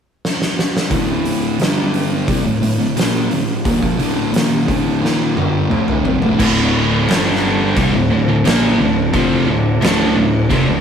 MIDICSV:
0, 0, Header, 1, 5, 480
1, 0, Start_track
1, 0, Key_signature, -1, "minor"
1, 0, Tempo, 684932
1, 641, Time_signature, 4, 2, 24, 8
1, 7573, End_track
2, 0, Start_track
2, 0, Title_t, "Synth drone"
2, 0, Program_c, 0, 95
2, 5443, Note_on_c, 0, 69, 73
2, 5444, Note_on_c, 0, 50, 86
2, 5446, Note_on_c, 0, 64, 91
2, 7343, Note_off_c, 0, 69, 0
2, 7363, Note_on_c, 0, 55, 71
2, 7573, Note_off_c, 0, 50, 0
2, 7573, Note_off_c, 0, 55, 0
2, 7573, Note_off_c, 0, 64, 0
2, 7573, End_track
3, 0, Start_track
3, 0, Title_t, "Distorted electric guitar"
3, 0, Program_c, 1, 30
3, 636, Note_on_c, 1, 38, 88
3, 641, Note_on_c, 1, 45, 96
3, 644, Note_on_c, 1, 50, 91
3, 1112, Note_off_c, 1, 38, 0
3, 1115, Note_off_c, 1, 45, 0
3, 1116, Note_off_c, 1, 50, 0
3, 1120, Note_on_c, 1, 43, 88
3, 1124, Note_on_c, 1, 50, 94
3, 1125, Note_on_c, 1, 55, 97
3, 1590, Note_off_c, 1, 55, 0
3, 1595, Note_off_c, 1, 43, 0
3, 1595, Note_off_c, 1, 50, 0
3, 1598, Note_on_c, 1, 55, 93
3, 1600, Note_on_c, 1, 48, 89
3, 1709, Note_off_c, 1, 48, 0
3, 1712, Note_off_c, 1, 55, 0
3, 1712, Note_on_c, 1, 38, 66
3, 1714, Note_on_c, 1, 45, 77
3, 1824, Note_off_c, 1, 38, 0
3, 1827, Note_off_c, 1, 45, 0
3, 1832, Note_on_c, 1, 38, 62
3, 1836, Note_on_c, 1, 45, 77
3, 1945, Note_off_c, 1, 38, 0
3, 1949, Note_off_c, 1, 45, 0
3, 1953, Note_on_c, 1, 38, 60
3, 1957, Note_on_c, 1, 45, 65
3, 2078, Note_off_c, 1, 38, 0
3, 2080, Note_off_c, 1, 45, 0
3, 2081, Note_on_c, 1, 46, 84
3, 2086, Note_on_c, 1, 53, 88
3, 2088, Note_on_c, 1, 58, 96
3, 2315, Note_off_c, 1, 46, 0
3, 2317, Note_off_c, 1, 53, 0
3, 2318, Note_off_c, 1, 58, 0
3, 2322, Note_on_c, 1, 38, 62
3, 2322, Note_on_c, 1, 45, 74
3, 2515, Note_off_c, 1, 38, 0
3, 2515, Note_off_c, 1, 45, 0
3, 2561, Note_on_c, 1, 39, 94
3, 2561, Note_on_c, 1, 46, 101
3, 2674, Note_off_c, 1, 46, 0
3, 2675, Note_off_c, 1, 39, 0
3, 2682, Note_on_c, 1, 46, 85
3, 2687, Note_on_c, 1, 53, 96
3, 2796, Note_off_c, 1, 46, 0
3, 2798, Note_off_c, 1, 53, 0
3, 2802, Note_on_c, 1, 38, 90
3, 2803, Note_on_c, 1, 45, 93
3, 2809, Note_on_c, 1, 50, 108
3, 3033, Note_off_c, 1, 38, 0
3, 3036, Note_on_c, 1, 39, 96
3, 3037, Note_off_c, 1, 45, 0
3, 3037, Note_off_c, 1, 50, 0
3, 3040, Note_on_c, 1, 46, 94
3, 3040, Note_on_c, 1, 51, 111
3, 3273, Note_off_c, 1, 39, 0
3, 3275, Note_off_c, 1, 46, 0
3, 3275, Note_off_c, 1, 51, 0
3, 3281, Note_on_c, 1, 38, 80
3, 3285, Note_on_c, 1, 45, 97
3, 3286, Note_on_c, 1, 50, 85
3, 3516, Note_off_c, 1, 38, 0
3, 3517, Note_off_c, 1, 45, 0
3, 3518, Note_off_c, 1, 50, 0
3, 3519, Note_on_c, 1, 39, 92
3, 3523, Note_on_c, 1, 51, 100
3, 3524, Note_on_c, 1, 46, 90
3, 3755, Note_off_c, 1, 39, 0
3, 3756, Note_off_c, 1, 51, 0
3, 3757, Note_off_c, 1, 46, 0
3, 3763, Note_on_c, 1, 43, 100
3, 3766, Note_on_c, 1, 50, 97
3, 3767, Note_on_c, 1, 55, 92
3, 3988, Note_off_c, 1, 50, 0
3, 3990, Note_off_c, 1, 43, 0
3, 3993, Note_on_c, 1, 38, 76
3, 3994, Note_off_c, 1, 55, 0
3, 3996, Note_on_c, 1, 45, 85
3, 3996, Note_on_c, 1, 50, 96
3, 4231, Note_off_c, 1, 38, 0
3, 4233, Note_off_c, 1, 45, 0
3, 4233, Note_off_c, 1, 50, 0
3, 4236, Note_on_c, 1, 41, 81
3, 4244, Note_on_c, 1, 48, 98
3, 4353, Note_off_c, 1, 41, 0
3, 4357, Note_off_c, 1, 48, 0
3, 4357, Note_on_c, 1, 38, 96
3, 4362, Note_on_c, 1, 45, 93
3, 4467, Note_off_c, 1, 38, 0
3, 4473, Note_off_c, 1, 45, 0
3, 4476, Note_on_c, 1, 38, 100
3, 4482, Note_on_c, 1, 45, 114
3, 4486, Note_on_c, 1, 50, 103
3, 4953, Note_off_c, 1, 38, 0
3, 4953, Note_off_c, 1, 50, 0
3, 4956, Note_off_c, 1, 45, 0
3, 4960, Note_on_c, 1, 43, 90
3, 4962, Note_on_c, 1, 50, 92
3, 4968, Note_on_c, 1, 55, 95
3, 5435, Note_off_c, 1, 43, 0
3, 5435, Note_off_c, 1, 50, 0
3, 5438, Note_off_c, 1, 55, 0
3, 5445, Note_on_c, 1, 48, 89
3, 5450, Note_on_c, 1, 55, 107
3, 5557, Note_off_c, 1, 48, 0
3, 5560, Note_off_c, 1, 55, 0
3, 5567, Note_on_c, 1, 38, 65
3, 5571, Note_on_c, 1, 45, 69
3, 5677, Note_off_c, 1, 38, 0
3, 5680, Note_off_c, 1, 45, 0
3, 5686, Note_on_c, 1, 38, 75
3, 5689, Note_on_c, 1, 45, 81
3, 5799, Note_off_c, 1, 38, 0
3, 5801, Note_off_c, 1, 45, 0
3, 5807, Note_on_c, 1, 38, 71
3, 5809, Note_on_c, 1, 45, 79
3, 5919, Note_off_c, 1, 38, 0
3, 5922, Note_on_c, 1, 46, 81
3, 5924, Note_off_c, 1, 45, 0
3, 5927, Note_on_c, 1, 53, 102
3, 5927, Note_on_c, 1, 58, 111
3, 6155, Note_off_c, 1, 46, 0
3, 6158, Note_off_c, 1, 53, 0
3, 6158, Note_off_c, 1, 58, 0
3, 6170, Note_on_c, 1, 38, 74
3, 6173, Note_on_c, 1, 45, 77
3, 6358, Note_off_c, 1, 38, 0
3, 6360, Note_off_c, 1, 45, 0
3, 6404, Note_on_c, 1, 41, 102
3, 6406, Note_on_c, 1, 48, 121
3, 6410, Note_on_c, 1, 53, 107
3, 6636, Note_off_c, 1, 41, 0
3, 6637, Note_off_c, 1, 48, 0
3, 6639, Note_off_c, 1, 53, 0
3, 6641, Note_on_c, 1, 38, 61
3, 6647, Note_on_c, 1, 45, 80
3, 6834, Note_off_c, 1, 38, 0
3, 6837, Note_off_c, 1, 45, 0
3, 6887, Note_on_c, 1, 38, 92
3, 6889, Note_on_c, 1, 45, 103
3, 6890, Note_on_c, 1, 50, 112
3, 7117, Note_off_c, 1, 38, 0
3, 7118, Note_off_c, 1, 45, 0
3, 7119, Note_off_c, 1, 50, 0
3, 7125, Note_on_c, 1, 38, 75
3, 7128, Note_on_c, 1, 45, 73
3, 7316, Note_off_c, 1, 38, 0
3, 7317, Note_off_c, 1, 45, 0
3, 7361, Note_on_c, 1, 41, 90
3, 7367, Note_on_c, 1, 48, 111
3, 7475, Note_off_c, 1, 41, 0
3, 7478, Note_off_c, 1, 48, 0
3, 7486, Note_on_c, 1, 38, 72
3, 7490, Note_on_c, 1, 45, 75
3, 7573, Note_off_c, 1, 38, 0
3, 7573, Note_off_c, 1, 45, 0
3, 7573, End_track
4, 0, Start_track
4, 0, Title_t, "Picked electric bass"
4, 0, Program_c, 2, 34
4, 4482, Note_on_c, 2, 26, 100
4, 4935, Note_off_c, 2, 26, 0
4, 4967, Note_on_c, 2, 31, 102
4, 5417, Note_off_c, 2, 31, 0
4, 5444, Note_on_c, 2, 36, 92
4, 5555, Note_off_c, 2, 36, 0
4, 5564, Note_on_c, 2, 26, 78
4, 5675, Note_off_c, 2, 26, 0
4, 5687, Note_on_c, 2, 26, 86
4, 5797, Note_off_c, 2, 26, 0
4, 5801, Note_on_c, 2, 26, 83
4, 5914, Note_off_c, 2, 26, 0
4, 5925, Note_on_c, 2, 34, 95
4, 6147, Note_off_c, 2, 34, 0
4, 6167, Note_on_c, 2, 26, 75
4, 6388, Note_off_c, 2, 26, 0
4, 6404, Note_on_c, 2, 29, 97
4, 6627, Note_off_c, 2, 29, 0
4, 6647, Note_on_c, 2, 26, 74
4, 6868, Note_off_c, 2, 26, 0
4, 6883, Note_on_c, 2, 26, 99
4, 7106, Note_off_c, 2, 26, 0
4, 7121, Note_on_c, 2, 26, 82
4, 7345, Note_off_c, 2, 26, 0
4, 7363, Note_on_c, 2, 29, 97
4, 7474, Note_off_c, 2, 29, 0
4, 7486, Note_on_c, 2, 26, 84
4, 7573, Note_off_c, 2, 26, 0
4, 7573, End_track
5, 0, Start_track
5, 0, Title_t, "Drums"
5, 174, Note_on_c, 9, 38, 65
5, 244, Note_off_c, 9, 38, 0
5, 292, Note_on_c, 9, 38, 73
5, 363, Note_off_c, 9, 38, 0
5, 414, Note_on_c, 9, 38, 84
5, 484, Note_off_c, 9, 38, 0
5, 537, Note_on_c, 9, 38, 100
5, 607, Note_off_c, 9, 38, 0
5, 636, Note_on_c, 9, 46, 69
5, 637, Note_on_c, 9, 36, 102
5, 706, Note_off_c, 9, 46, 0
5, 707, Note_off_c, 9, 36, 0
5, 879, Note_on_c, 9, 46, 53
5, 949, Note_off_c, 9, 46, 0
5, 1118, Note_on_c, 9, 46, 61
5, 1135, Note_on_c, 9, 38, 108
5, 1188, Note_off_c, 9, 46, 0
5, 1205, Note_off_c, 9, 38, 0
5, 1358, Note_on_c, 9, 46, 53
5, 1429, Note_off_c, 9, 46, 0
5, 1598, Note_on_c, 9, 36, 98
5, 1600, Note_on_c, 9, 46, 71
5, 1668, Note_off_c, 9, 36, 0
5, 1670, Note_off_c, 9, 46, 0
5, 1842, Note_on_c, 9, 46, 55
5, 1912, Note_off_c, 9, 46, 0
5, 2081, Note_on_c, 9, 46, 69
5, 2099, Note_on_c, 9, 38, 106
5, 2151, Note_off_c, 9, 46, 0
5, 2169, Note_off_c, 9, 38, 0
5, 2319, Note_on_c, 9, 46, 50
5, 2390, Note_off_c, 9, 46, 0
5, 2560, Note_on_c, 9, 36, 107
5, 2560, Note_on_c, 9, 46, 68
5, 2630, Note_off_c, 9, 36, 0
5, 2630, Note_off_c, 9, 46, 0
5, 2681, Note_on_c, 9, 36, 92
5, 2751, Note_off_c, 9, 36, 0
5, 2800, Note_on_c, 9, 46, 50
5, 2870, Note_off_c, 9, 46, 0
5, 3040, Note_on_c, 9, 46, 69
5, 3058, Note_on_c, 9, 38, 113
5, 3110, Note_off_c, 9, 46, 0
5, 3128, Note_off_c, 9, 38, 0
5, 3282, Note_on_c, 9, 36, 98
5, 3284, Note_on_c, 9, 46, 49
5, 3352, Note_off_c, 9, 36, 0
5, 3354, Note_off_c, 9, 46, 0
5, 3540, Note_on_c, 9, 38, 61
5, 3610, Note_off_c, 9, 38, 0
5, 3764, Note_on_c, 9, 48, 70
5, 3834, Note_off_c, 9, 48, 0
5, 4003, Note_on_c, 9, 47, 76
5, 4073, Note_off_c, 9, 47, 0
5, 4121, Note_on_c, 9, 45, 76
5, 4191, Note_off_c, 9, 45, 0
5, 4241, Note_on_c, 9, 43, 91
5, 4311, Note_off_c, 9, 43, 0
5, 4360, Note_on_c, 9, 43, 80
5, 4430, Note_off_c, 9, 43, 0
5, 4482, Note_on_c, 9, 36, 107
5, 4483, Note_on_c, 9, 49, 122
5, 4483, Note_on_c, 9, 57, 59
5, 4552, Note_off_c, 9, 36, 0
5, 4553, Note_off_c, 9, 49, 0
5, 4553, Note_off_c, 9, 57, 0
5, 4965, Note_on_c, 9, 57, 61
5, 4982, Note_on_c, 9, 38, 116
5, 5035, Note_off_c, 9, 57, 0
5, 5052, Note_off_c, 9, 38, 0
5, 5442, Note_on_c, 9, 36, 108
5, 5442, Note_on_c, 9, 57, 69
5, 5512, Note_off_c, 9, 36, 0
5, 5512, Note_off_c, 9, 57, 0
5, 5922, Note_on_c, 9, 57, 67
5, 5939, Note_on_c, 9, 38, 126
5, 5992, Note_off_c, 9, 57, 0
5, 6009, Note_off_c, 9, 38, 0
5, 6403, Note_on_c, 9, 36, 107
5, 6403, Note_on_c, 9, 57, 60
5, 6473, Note_off_c, 9, 36, 0
5, 6473, Note_off_c, 9, 57, 0
5, 6883, Note_on_c, 9, 57, 58
5, 6900, Note_on_c, 9, 38, 112
5, 6953, Note_off_c, 9, 57, 0
5, 6971, Note_off_c, 9, 38, 0
5, 7362, Note_on_c, 9, 36, 104
5, 7366, Note_on_c, 9, 57, 60
5, 7432, Note_off_c, 9, 36, 0
5, 7436, Note_off_c, 9, 57, 0
5, 7573, End_track
0, 0, End_of_file